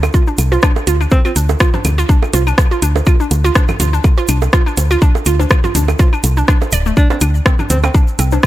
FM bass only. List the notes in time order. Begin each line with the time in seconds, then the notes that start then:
0.38 C2
0.87 D2
1.36 D2
1.85 D2
2.34 C2
2.82 D2
3.31 D2
3.80 D2
4.29 C2
4.77 D2
5.26 D2
5.75 D2
6.24 C2
6.72 D1
7.21 D2
7.70 D2
8.19 C2